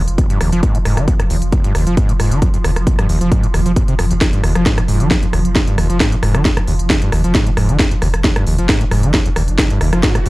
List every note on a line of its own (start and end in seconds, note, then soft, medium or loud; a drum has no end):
0.00 10.29 F3 medium
0.08 0.18 F1 medium
0.08 closed hi-hat medium
0.18 0.28 F1 medium
0.18 kick loud
0.18 closed hi-hat loud
0.30 0.40 F1 medium
0.30 0.39 G2 medium
0.30 closed hi-hat medium
0.41 0.52 F1 loud
0.41 0.50 D#2 medium
0.41 cross-stick medium
0.41 open hi-hat loud
0.52 0.63 F1 medium
0.52 0.61 F3 loud
0.52 closed hi-hat medium
0.63 0.76 G#2 medium
0.63 kick loud
0.63 closed hi-hat loud
0.75 0.85 F1 medium
0.75 0.78 A#2 medium
0.75 closed hi-hat medium
0.85 0.97 F1 medium
0.85 0.99 G#2 medium
0.85 cross-stick medium
0.85 open hi-hat loud
0.97 1.08 F1 medium
0.97 1.06 D#3 loud
0.97 cross-stick medium
0.97 closed hi-hat soft
1.08 1.14 F2 medium
1.08 kick loud
1.08 closed hi-hat medium
1.20 1.30 F1 medium
1.20 1.23 F2 medium
1.20 cross-stick medium
1.20 closed hi-hat medium
1.30 1.41 F1 loud
1.30 1.37 D#2 medium
1.30 open hi-hat loud
1.42 1.52 F1 medium
1.42 closed hi-hat medium
1.52 1.62 F1 medium
1.52 kick loud
1.52 closed hi-hat medium
1.64 1.74 F1 medium
1.64 1.73 G2 medium
1.64 closed hi-hat medium
1.75 1.86 F1 loud
1.75 1.85 D#2 medium
1.75 cross-stick medium
1.75 open hi-hat loud
1.87 1.97 F1 medium
1.87 1.95 F3 loud
1.87 closed hi-hat medium
1.97 2.11 G#2 medium
1.97 kick loud
1.97 closed hi-hat medium
2.09 2.19 F1 medium
2.09 2.13 A#2 medium
2.09 closed hi-hat medium
2.20 2.31 F1 loud
2.20 2.33 G#2 medium
2.20 cross-stick medium
2.20 open hi-hat loud
2.31 2.42 F1 medium
2.31 2.40 D#3 loud
2.31 closed hi-hat medium
2.42 2.49 F2 medium
2.42 kick loud
2.42 closed hi-hat loud
2.54 2.64 F1 medium
2.54 2.57 F2 medium
2.54 closed hi-hat medium
2.64 2.76 F1 medium
2.64 2.71 D#2 medium
2.64 cross-stick loud
2.64 open hi-hat loud
2.76 2.87 F1 medium
2.76 cross-stick medium
2.76 closed hi-hat soft
2.87 2.97 F1 medium
2.87 kick loud
2.87 closed hi-hat medium
2.99 3.09 F1 medium
2.99 3.07 G2 medium
2.99 cross-stick loud
2.99 closed hi-hat medium
3.09 3.20 F1 loud
3.09 3.19 D#2 medium
3.09 open hi-hat loud
3.21 3.31 F1 medium
3.21 3.30 F3 loud
3.21 closed hi-hat medium
3.32 3.45 G#2 medium
3.32 kick loud
3.32 closed hi-hat medium
3.43 3.53 F1 medium
3.43 3.47 A#2 medium
3.43 closed hi-hat medium
3.54 3.65 F1 loud
3.54 3.60 D#2 loud
3.54 cross-stick medium
3.54 open hi-hat loud
3.66 3.76 F1 medium
3.66 3.72 F3 medium
3.66 closed hi-hat medium
3.76 3.83 G#2 medium
3.76 kick loud
3.76 closed hi-hat medium
3.88 3.98 F1 medium
3.88 3.94 C3 loud
3.88 closed hi-hat medium
3.99 4.10 F1 loud
3.99 4.05 F2 medium
3.99 cross-stick loud
3.99 open hi-hat loud
4.11 4.21 F1 medium
4.11 4.14 D#2 medium
4.11 closed hi-hat medium
4.21 4.31 F1 medium
4.21 kick loud
4.21 snare loud
4.21 closed hi-hat medium
4.33 4.43 F1 medium
4.33 4.42 G2 medium
4.33 closed hi-hat medium
4.43 4.55 F1 medium
4.43 4.53 D#2 medium
4.43 cross-stick medium
4.43 open hi-hat loud
4.55 4.66 F1 medium
4.55 4.64 F3 loud
4.55 cross-stick medium
4.55 closed hi-hat soft
4.66 4.79 G#2 medium
4.66 kick loud
4.66 snare loud
4.66 closed hi-hat medium
4.78 4.88 F1 medium
4.78 4.81 A#2 medium
4.78 cross-stick loud
4.78 closed hi-hat medium
4.88 5.00 F1 loud
4.88 5.02 G#2 medium
4.88 open hi-hat loud
5.00 5.11 F1 medium
5.00 5.09 D#3 loud
5.00 closed hi-hat soft
5.11 5.17 F2 medium
5.11 kick loud
5.11 snare loud
5.11 closed hi-hat medium
5.22 5.33 F1 medium
5.22 5.26 F2 medium
5.22 closed hi-hat medium
5.33 5.44 F1 loud
5.33 5.40 D#2 medium
5.33 cross-stick medium
5.33 open hi-hat loud
5.45 5.55 F1 medium
5.45 closed hi-hat soft
5.55 5.65 F1 medium
5.55 kick loud
5.55 snare loud
5.55 closed hi-hat medium
5.67 5.77 F1 medium
5.67 5.76 G2 medium
5.67 closed hi-hat soft
5.78 5.89 F1 loud
5.78 5.88 D#2 medium
5.78 cross-stick loud
5.78 open hi-hat loud
5.90 6.00 F1 medium
5.90 5.98 F3 loud
5.90 closed hi-hat soft
6.00 6.14 G#2 medium
6.00 kick loud
6.00 snare loud
6.00 closed hi-hat medium
6.12 6.22 F1 medium
6.12 6.16 A#2 medium
6.12 closed hi-hat soft
6.23 6.34 F1 medium
6.23 6.36 G#2 medium
6.23 cross-stick loud
6.23 open hi-hat loud
6.34 6.45 F1 medium
6.34 6.43 D#3 loud
6.34 cross-stick loud
6.34 closed hi-hat soft
6.45 6.52 F2 medium
6.45 kick loud
6.45 snare loud
6.45 closed hi-hat medium
6.57 6.67 F1 medium
6.57 6.60 F2 medium
6.57 cross-stick loud
6.57 closed hi-hat medium
6.67 6.79 F1 loud
6.67 6.74 D#2 medium
6.67 open hi-hat medium
6.79 6.90 F1 medium
6.79 closed hi-hat medium
6.90 7.00 F1 medium
6.90 kick loud
6.90 snare loud
6.90 closed hi-hat medium
7.02 7.12 F1 medium
7.02 7.10 G2 medium
7.02 closed hi-hat medium
7.12 7.24 F1 loud
7.12 7.22 D#2 medium
7.12 cross-stick loud
7.12 open hi-hat loud
7.24 7.34 F1 medium
7.24 7.33 F3 loud
7.24 closed hi-hat medium
7.35 7.48 G#2 medium
7.35 kick loud
7.35 snare loud
7.35 closed hi-hat medium
7.47 7.56 F1 medium
7.47 7.50 A#2 medium
7.47 closed hi-hat medium
7.57 7.68 F1 loud
7.57 7.70 G#2 medium
7.57 cross-stick loud
7.57 open hi-hat loud
7.69 7.79 F1 medium
7.69 7.78 D#3 loud
7.69 closed hi-hat medium
7.79 7.86 F2 medium
7.79 kick loud
7.79 snare loud
7.79 closed hi-hat medium
7.79 riser medium
7.91 8.01 F1 medium
7.91 7.95 F2 medium
7.91 closed hi-hat soft
8.02 8.13 F1 loud
8.02 8.08 D#2 medium
8.02 cross-stick medium
8.02 open hi-hat loud
8.14 8.24 F1 medium
8.14 cross-stick medium
8.14 closed hi-hat soft
8.24 8.34 F1 medium
8.24 kick loud
8.24 snare loud
8.24 closed hi-hat medium
8.36 8.46 F1 medium
8.36 8.45 G2 medium
8.36 cross-stick loud
8.36 closed hi-hat medium
8.47 8.58 F1 loud
8.47 8.56 D#2 medium
8.47 open hi-hat loud
8.58 8.69 F1 medium
8.58 8.67 F3 loud
8.58 closed hi-hat medium
8.69 8.82 G#2 medium
8.69 kick loud
8.69 snare loud
8.69 closed hi-hat medium
8.81 8.91 F1 medium
8.81 8.84 A#2 medium
8.81 closed hi-hat medium
8.91 9.03 F1 loud
8.91 9.05 G#2 medium
8.91 cross-stick medium
8.91 open hi-hat loud
9.03 9.14 F1 medium
9.03 9.12 D#3 loud
9.03 closed hi-hat medium
9.14 9.20 F2 medium
9.14 kick loud
9.14 snare loud
9.14 closed hi-hat medium
9.26 9.36 F1 medium
9.26 9.29 F2 medium
9.26 closed hi-hat soft
9.36 9.47 F1 loud
9.36 9.43 D#2 medium
9.36 cross-stick loud
9.36 open hi-hat loud
9.48 9.58 F1 medium
9.48 closed hi-hat medium
9.58 9.68 F1 medium
9.58 kick loud
9.58 snare loud
9.58 closed hi-hat medium
9.70 9.80 F1 medium
9.70 9.79 G2 medium
9.70 closed hi-hat medium
9.81 9.92 F1 medium
9.81 9.91 D#2 medium
9.81 cross-stick medium
9.81 open hi-hat loud
9.93 10.03 F1 medium
9.93 10.01 F3 loud
9.93 cross-stick medium
9.93 closed hi-hat medium
10.03 10.17 G#2 medium
10.03 kick loud
10.03 snare loud
10.03 closed hi-hat medium
10.15 10.25 F1 medium
10.15 10.19 A#2 medium
10.15 cross-stick medium
10.15 closed hi-hat medium
10.26 10.29 F1 loud
10.26 10.29 G#2 medium
10.26 open hi-hat loud